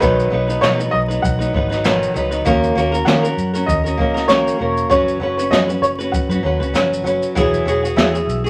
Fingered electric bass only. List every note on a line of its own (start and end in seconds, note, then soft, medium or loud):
0.01 0.27 B1 medium
0.32 0.57 B1 medium
0.62 0.87 B2 loud
0.93 1.18 B1 loud
1.23 1.49 B1 medium
1.54 2.05 G#1 loud
2.15 2.41 C#2 medium
2.46 2.71 D#2 loud
2.76 3.01 D#2 medium
3.07 3.32 D#3 loud
3.37 3.63 F#2 medium
3.68 3.99 D#2 medium
3.99 4.49 C#2 medium
4.60 4.85 E1 medium
4.91 5.16 F#1 medium
5.21 5.46 F#1 loud
5.51 5.77 F#2 loud
5.82 6.07 F#1 medium
6.29 6.41 F#2 loud
6.44 6.58 D#2 medium
6.60 6.72 C#2 medium
6.73 6.99 F#1 medium
7.04 7.18 F#1 medium
7.36 7.61 E1 medium
7.66 7.91 E1 medium
7.97 8.22 E2 loud
8.27 8.50 B1 loud